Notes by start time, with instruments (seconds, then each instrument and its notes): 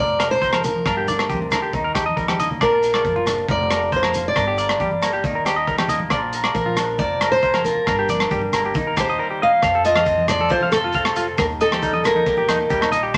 Already playing: upright bass F1
0.00 clean electric guitar F3 A#4, steel-string acoustic guitar D5
0.19 clean electric guitar A#4, cross-stick, closed hi-hat, low agogo, maracas
0.31 steel-string acoustic guitar C5, maracas
0.42 clean electric guitar D#3 C5, kick, maracas
0.53 clean electric guitar A#4, cross-stick, high conga, low agogo
0.64 clean electric guitar F3, steel-string acoustic guitar A#4, closed hi-hat, low conga, maracas
0.76 high conga
0.85 upright bass G1, clean electric guitar G2 D4 A#4, kick, cross-stick, low agogo, maracas
0.97 clean electric guitar G4
1.08 clean electric guitar D4 D5, closed hi-hat, high conga, low conga, maracas
1.19 cross-stick, low agogo
1.29 upright bass D2, clean electric guitar C3 G4, kick, high conga, maracas
1.42 high conga
1.51 clean electric guitar D3 A#4, cross-stick, closed hi-hat, low conga, low agogo, maracas
1.62 clean electric guitar G4
1.73 upright bass D#2, clean electric guitar D#3 D#4, kick, low conga, maracas
1.84 clean electric guitar A#4
1.95 clean electric guitar G4, kick, cross-stick, closed hi-hat, low agogo, maracas
2.06 clean electric guitar D#5, high conga
2.17 clean electric guitar G3 A#4, kick, high conga, maracas
2.28 clean electric guitar G4, cross-stick, high conga, low agogo
2.40 clean electric guitar A#3 D#5, closed hi-hat, low conga, maracas
2.51 low conga
2.61 upright bass A#1, clean electric guitar A#2 D4 D5, steel-string acoustic guitar A#4, kick, cross-stick, low agogo, maracas
2.72 clean electric guitar F4
2.81 clean electric guitar D4, closed hi-hat, maracas
2.93 clean electric guitar F4 D5, cross-stick, low agogo
3.04 upright bass F#1, clean electric guitar F3, kick, high conga, maracas
3.16 clean electric guitar F4, high conga
3.26 clean electric guitar D4, cross-stick, closed hi-hat, low conga, low agogo, maracas
3.38 maracas
3.48 upright bass F1, clean electric guitar F3 A#4, steel-string acoustic guitar D5, kick, low conga, maracas
3.70 clean electric guitar A#4, cross-stick, closed hi-hat, low agogo, maracas
3.82 maracas
3.92 clean electric guitar A#3 C5, kick, maracas
3.96 steel-string acoustic guitar C5
4.02 clean electric guitar A#4, cross-stick, high conga, low agogo
4.14 clean electric guitar F4, closed hi-hat, low conga, maracas
4.28 steel-string acoustic guitar D5
4.36 upright bass G1, clean electric guitar G2 D4 A#4, kick, cross-stick, low agogo, maracas
4.47 clean electric guitar G4
4.58 clean electric guitar A#4 D5, closed hi-hat, maracas
4.69 cross-stick, low agogo
4.80 upright bass G1, clean electric guitar G3 G4, kick, high conga, maracas
4.91 high conga
5.02 clean electric guitar A#3 A#4, cross-stick, closed hi-hat, low agogo, maracas
5.13 clean electric guitar G4, maracas
5.24 upright bass D#2, clean electric guitar D#3 D#4, kick, low conga, maracas
5.35 clean electric guitar A#4
5.45 clean electric guitar G4, cross-stick, closed hi-hat, low agogo, maracas
5.56 clean electric guitar D#5
5.67 clean electric guitar G3 A#4, kick, maracas
5.78 clean electric guitar G4, cross-stick, high conga, low agogo
5.88 clean electric guitar A#3 D#5, closed hi-hat, low conga, maracas
6.00 high conga
6.10 upright bass A#1, clean electric guitar A#2 F3 D4 F4 D5, kick, cross-stick, low agogo, maracas
6.15 clean electric guitar A#4
6.33 clean electric guitar A#4, closed hi-hat, maracas
6.44 clean electric guitar D5, cross-stick, low agogo
6.54 upright bass A#1, clean electric guitar F3, steel-string acoustic guitar A#4, kick, high conga, maracas
6.66 clean electric guitar F4, high conga
6.76 clean electric guitar D4, cross-stick, closed hi-hat, low conga, low agogo, maracas
6.88 maracas
6.98 upright bass F1, clean electric guitar F3 A#4, steel-string acoustic guitar D5, kick, low conga, maracas
7.21 clean electric guitar A#4, cross-stick, closed hi-hat, low agogo, maracas
7.32 steel-string acoustic guitar C5
7.43 clean electric guitar A#3 C5, kick, maracas
7.54 clean electric guitar A#4, cross-stick, high conga, low agogo
7.64 clean electric guitar F4, steel-string acoustic guitar A#4, closed hi-hat, low conga, maracas
7.75 high conga
7.86 upright bass G1, clean electric guitar G2 D4 A#4, kick, cross-stick, low agogo, maracas
7.99 clean electric guitar G4
8.09 clean electric guitar D4 D5, closed hi-hat, high conga, low conga, maracas
8.20 cross-stick, low agogo
8.31 upright bass G1, clean electric guitar G3 G4, kick, high conga, maracas
8.42 high conga
8.52 clean electric guitar A#3 A#4, cross-stick, closed hi-hat, low conga, low agogo, maracas
8.65 clean electric guitar G4, maracas
8.74 upright bass D#2, clean electric guitar D#3 D#4, kick, low conga, maracas
8.87 clean electric guitar A#4
8.96 clean electric guitar G4, steel-string acoustic guitar C5, kick, cross-stick, closed hi-hat, low agogo, maracas
9.08 clean electric guitar D#5, maracas
9.19 clean electric guitar G3 A#4
9.30 clean electric guitar G4
9.41 clean electric guitar A#3 D#5, steel-string acoustic guitar F5
9.62 upright bass F2, clean electric guitar F3 F5, kick, cross-stick, low agogo, maracas
9.74 clean electric guitar A4, maracas
9.85 clean electric guitar F4 A4, steel-string acoustic guitar D#5, closed hi-hat, maracas
9.95 clean electric guitar F5, cross-stick, high conga, low agogo
10.06 clean electric guitar C4, kick, maracas
10.17 high conga, maracas
10.28 clean electric guitar F4, steel-string acoustic guitar D5, cross-stick, closed hi-hat, low conga, low agogo, maracas
10.39 clean electric guitar A4, high conga, maracas
10.49 clean electric guitar C3 F4 A4, steel-string acoustic guitar C5, kick, maracas
10.61 clean electric guitar F5, high conga
10.71 upright bass F2, clean electric guitar F4, steel-string acoustic guitar A4, cross-stick, closed hi-hat, high conga, low agogo, maracas
10.84 clean electric guitar F4
10.93 upright bass F2, clean electric guitar C4 F4 F5, kick, maracas
11.05 cross-stick, low agogo
11.16 upright bass F2, clean electric guitar F4, closed hi-hat, maracas
11.27 maracas
11.38 upright bass D#2, clean electric guitar D#3, steel-string acoustic guitar A#4, kick, cross-stick, low agogo, maracas
11.60 clean electric guitar D#4 D#5, steel-string acoustic guitar A4, closed hi-hat, maracas
11.71 clean electric guitar G4, cross-stick, high conga, low agogo, maracas
11.82 clean electric guitar G3 D#4, kick, maracas
11.93 clean electric guitar D#5, high conga, maracas
12.04 clean electric guitar A#3, steel-string acoustic guitar A#4, cross-stick, closed hi-hat, low conga, low agogo, maracas
12.15 clean electric guitar D#4, high conga, maracas
12.26 clean electric guitar A#2 G4, kick, maracas
12.37 clean electric guitar G4, high conga, maracas
12.48 upright bass D#2, clean electric guitar D#4, cross-stick, closed hi-hat, high conga, low agogo, maracas
12.59 maracas
12.70 upright bass D#2, clean electric guitar G3 A#3 G4, kick, maracas
12.81 clean electric guitar D#4, cross-stick, low agogo
12.92 upright bass A#1, clean electric guitar D#4 D#5, closed hi-hat, low conga, maracas
13.03 clean electric guitar G4, maracas
13.14 upright bass F2, clean electric guitar F3 C5, kick, low agogo, maracas